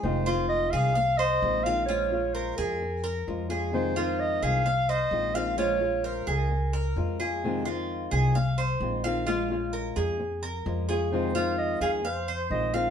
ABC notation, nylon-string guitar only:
X:1
M:4/4
L:1/8
Q:1/4=130
K:Fm
V:1 name="Nylon-string guitar"
[C,E,A,CF] [E,A,CF]3 z2 [E,A,CF] [E,A,CF] | [F,A,DF] [A,DF]3 z2 [F,A,DF] [A,DF] | [C,E,A,CF] [E,A,CF]3 z2 [E,A,CF] [E,A,CF] | [F,A,DF] [A,DF]3 z2 [F,A,DF] [A,DF] |
[C,E,A,CF] [E,A,CF]3 z2 [E,A,CF] [E,A,CF] | [F,A,DF] [A,DF]3 z2 [F,A,DF] [A,DF] | [C,E,A,CF] [E,A,CF]3 z2 [E,A,CF] [E,A,CF] |]